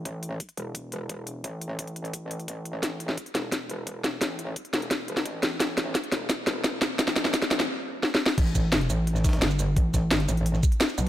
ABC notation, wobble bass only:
X:1
M:4/4
L:1/8
Q:1/4=173
K:C
V:1 name="Wobble bass" clef=bass
A,,,2 z E,,,3 E,,,2 | A,,,2 A,,,6 | A,,,2 z E,,,3 E,,,2 | A,,,2 z E,,,3 A,,,2 |
A,,,2 z E,,,3 E,,,2 | A,,,2 z A,,, z4 | A,,,3 A,,,3 G,,,2 | A,,,3 A,,,2 z2 B,,, |]